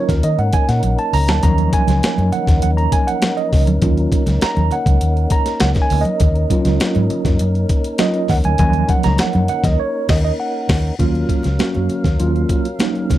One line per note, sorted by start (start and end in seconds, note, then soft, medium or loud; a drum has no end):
0.00 0.19 F#3 medium
0.00 10.95 A#3 medium
0.00 0.20 C#4 medium
0.00 10.95 C#4 medium
0.00 10.95 D#4 medium
0.00 0.20 F4 medium
0.00 10.95 A#4 medium
0.09 0.21 D#2 medium
0.09 0.24 A#4 medium
0.09 kick medium
0.09 snare soft
0.09 closed hi-hat medium
0.09 high conga medium
0.23 0.35 D#3 loud
0.23 0.39 D#5 loud
0.23 closed hi-hat medium
0.38 0.50 G#2 medium
0.38 0.54 F#5 medium
0.38 closed hi-hat soft
0.53 0.68 G#5 medium
0.53 kick medium
0.53 closed hi-hat medium
0.53 muted conga soft
0.69 0.80 A#2 medium
0.69 0.97 F#5 medium
0.69 snare soft
0.69 closed hi-hat medium
0.83 0.95 A#1 medium
0.83 closed hi-hat medium
0.83 high conga medium
0.99 1.14 A5 loud
0.99 closed hi-hat soft
1.13 1.28 C#2 medium
1.13 1.29 A#5 loud
1.13 open hi-hat medium
1.13 muted conga soft
1.13 low conga medium
1.28 1.40 D2 medium
1.28 1.42 A5 loud
1.28 snare loud
1.28 closed hi-hat medium
1.28 high conga medium
1.43 1.67 D#2 loud
1.43 3.79 F3 medium
1.43 3.78 F#3 medium
1.43 3.78 C#4 medium
1.43 1.74 A#5 loud
1.43 kick loud
1.43 closed hi-hat medium
1.43 muted conga soft
1.43 low conga medium
1.58 closed hi-hat soft
1.73 2.29 G#5 loud
1.73 kick medium
1.73 closed hi-hat medium
1.73 muted conga soft
1.87 1.99 C#2 medium
1.87 snare soft
1.87 closed hi-hat medium
1.87 high conga medium
2.03 snare loud
2.03 closed hi-hat loud
2.03 muted conga soft
2.18 2.30 F#2 medium
2.18 closed hi-hat soft
2.18 high conga medium
2.32 2.60 F#5 loud
2.32 closed hi-hat medium
2.32 muted conga soft
2.32 low conga medium
2.47 2.59 D#2 loud
2.47 kick loud
2.47 snare soft
2.47 closed hi-hat soft
2.47 high conga medium
2.62 2.86 D#2 medium
2.62 2.69 F#5 medium
2.62 closed hi-hat medium
2.62 muted conga soft
2.77 2.93 A#5 medium
2.77 closed hi-hat soft
2.92 3.08 G#5 loud
2.92 kick medium
2.92 closed hi-hat medium
2.92 muted conga soft
3.07 3.38 F#5 loud
3.07 closed hi-hat medium
3.22 snare loud
3.22 closed hi-hat medium
3.22 muted conga soft
3.22 high conga medium
3.37 3.65 D#5 medium
3.37 closed hi-hat soft
3.53 3.67 C#2 medium
3.53 kick loud
3.53 snare soft
3.53 open hi-hat medium
3.53 low conga medium
3.67 3.79 D2 medium
3.67 closed hi-hat soft
3.67 high conga medium
3.81 4.05 D#2 loud
3.81 4.21 F#3 medium
3.81 4.21 C#4 medium
3.81 4.22 F4 medium
3.81 kick loud
3.81 closed hi-hat medium
3.81 muted conga soft
3.81 low conga medium
3.97 closed hi-hat soft
4.12 kick medium
4.12 closed hi-hat medium
4.12 muted conga soft
4.26 4.39 C#2 medium
4.26 snare soft
4.26 closed hi-hat medium
4.26 high conga medium
4.41 4.73 A#5 loud
4.41 snare loud
4.41 closed hi-hat loud
4.57 4.68 D#2 medium
4.57 closed hi-hat soft
4.57 high conga medium
4.71 5.33 F#5 loud
4.71 closed hi-hat medium
4.71 muted conga soft
4.71 low conga medium
4.86 4.98 C#2 medium
4.86 kick loud
4.86 closed hi-hat medium
4.86 high conga medium
5.01 5.25 D#2 medium
5.01 closed hi-hat loud
5.17 closed hi-hat soft
5.30 5.59 A#5 loud
5.30 kick medium
5.30 closed hi-hat medium
5.46 snare soft
5.46 closed hi-hat medium
5.60 5.73 C#2 medium
5.60 5.70 F#5 medium
5.60 snare loud
5.60 closed hi-hat medium
5.60 high conga medium
5.75 kick loud
5.75 snare soft
5.75 closed hi-hat soft
5.82 6.02 G#5 loud
5.90 6.03 D2 loud
5.90 open hi-hat medium
5.90 muted conga soft
5.90 low conga medium
6.01 7.46 D#5 medium
6.01 high conga medium
6.05 closed hi-hat soft
6.20 6.44 D#2 loud
6.20 kick loud
6.20 closed hi-hat medium
6.20 low conga medium
6.35 closed hi-hat soft
6.50 7.36 F#3 medium
6.50 7.36 C#4 medium
6.50 7.37 F4 medium
6.50 kick medium
6.50 closed hi-hat medium
6.50 muted conga soft
6.65 6.77 C#2 loud
6.65 snare soft
6.65 closed hi-hat medium
6.65 high conga medium
6.80 snare loud
6.80 closed hi-hat loud
6.80 muted conga soft
6.95 7.07 G#2 medium
6.95 closed hi-hat soft
6.95 high conga medium
7.10 closed hi-hat medium
7.10 muted conga soft
7.10 low conga medium
7.25 7.37 F#2 medium
7.25 kick loud
7.25 snare soft
7.25 closed hi-hat medium
7.25 high conga medium
7.39 7.64 F#2 loud
7.39 closed hi-hat loud
7.39 muted conga soft
7.55 closed hi-hat soft
7.69 kick medium
7.69 closed hi-hat medium
7.84 closed hi-hat medium
7.98 8.27 F#3 soft
7.98 8.27 C#4 soft
7.98 8.27 F4 medium
7.98 8.31 D#5 medium
7.98 snare loud
7.98 closed hi-hat medium
7.98 muted conga soft
7.98 high conga medium
8.14 closed hi-hat soft
8.28 8.41 D#2 medium
8.28 8.36 F#5 loud
8.28 kick medium
8.28 snare soft
8.28 open hi-hat medium
8.28 low conga medium
8.44 8.56 D2 medium
8.44 8.58 G#5 loud
8.44 closed hi-hat soft
8.44 high conga medium
8.58 8.83 D#2 loud
8.58 9.45 F3 medium
8.58 9.45 F#3 medium
8.58 9.45 C#4 medium
8.58 8.90 G#5 loud
8.58 kick loud
8.58 closed hi-hat medium
8.58 muted conga soft
8.58 low conga medium
8.73 closed hi-hat soft
8.89 9.05 F#5 loud
8.89 kick medium
8.89 closed hi-hat medium
8.89 muted conga soft
9.03 9.17 C#2 loud
9.03 9.20 A#5 loud
9.03 snare soft
9.03 closed hi-hat medium
9.03 high conga medium
9.18 9.47 F#5 loud
9.18 snare loud
9.18 closed hi-hat loud
9.33 9.46 F#2 medium
9.33 closed hi-hat soft
9.33 high conga medium
9.48 9.65 F#5 medium
9.48 closed hi-hat medium
9.48 muted conga soft
9.48 low conga medium
9.63 9.76 D#2 medium
9.63 9.80 D#5 medium
9.63 kick loud
9.63 snare soft
9.63 closed hi-hat medium
9.63 high conga medium
9.80 10.07 C#5 loud
10.09 10.30 D#2 loud
10.09 10.16 D#5 loud
10.09 kick loud
10.09 snare loud
10.09 crash medium
10.25 10.31 D#5 medium
10.40 10.95 F#5 medium
10.69 10.90 D#2 medium
10.69 kick loud
10.69 snare loud
10.69 crash medium
10.99 11.23 D#2 medium
10.99 11.45 F#3 medium
10.99 13.18 F#3 medium
10.99 11.45 A#3 medium
10.99 11.45 C#4 medium
10.99 13.18 C#4 medium
10.99 11.45 F4 medium
10.99 13.18 A#4 medium
10.99 13.18 F5 medium
10.99 kick medium
10.99 closed hi-hat medium
10.99 low conga medium
11.15 closed hi-hat soft
11.29 kick medium
11.29 closed hi-hat medium
11.43 11.57 C#2 medium
11.43 snare soft
11.43 closed hi-hat medium
11.43 high conga medium
11.59 12.05 F#3 medium
11.59 12.05 A#3 medium
11.59 12.05 C#4 medium
11.59 12.05 F#4 medium
11.59 snare loud
11.59 closed hi-hat medium
11.59 muted conga soft
11.74 11.87 F#2 medium
11.74 closed hi-hat soft
11.74 high conga medium
11.89 closed hi-hat medium
11.89 low conga medium
12.04 12.16 D#2 medium
12.04 kick loud
12.04 snare soft
12.04 closed hi-hat soft
12.04 high conga medium
12.19 12.44 D#2 loud
12.19 12.66 F#3 medium
12.19 12.66 A#3 medium
12.19 12.66 C#4 medium
12.19 12.66 F4 medium
12.19 closed hi-hat medium
12.19 muted conga soft
12.36 closed hi-hat soft
12.49 kick medium
12.49 closed hi-hat medium
12.49 muted conga soft
12.65 closed hi-hat medium
12.79 12.86 F3 medium
12.79 13.18 A#3 medium
12.79 13.18 C#4 medium
12.79 13.18 D#4 medium
12.79 snare loud
12.79 closed hi-hat medium
12.79 muted conga soft
12.79 high conga medium
12.86 13.18 F#3 medium
12.95 closed hi-hat soft
13.10 13.18 C#2 medium
13.10 kick medium
13.10 snare soft
13.10 closed hi-hat medium
13.10 muted conga soft
13.10 low conga medium